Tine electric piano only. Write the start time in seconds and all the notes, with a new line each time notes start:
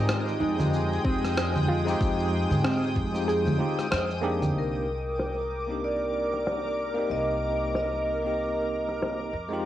Already playing: G#3 C4 D#4 F4 G4
0.56 G#3 C4 D#4 F4
0.61 G4
1.85 G#3 C4 D#4 F4
1.89 G4
3.13 G#3 C4 D#4 F4 G4
3.58 G#3 C4 D#4 F4 G4
4.22 A#3 C4 D4 D#4 G4
5.67 A#3 C4 D4 D#4
5.72 G4
6.94 A#3 C4 D#4
6.99 G4
8.22 A#3 C4 D#4
8.27 G4
9.49 G#3 C4 D#4 F4
9.53 G4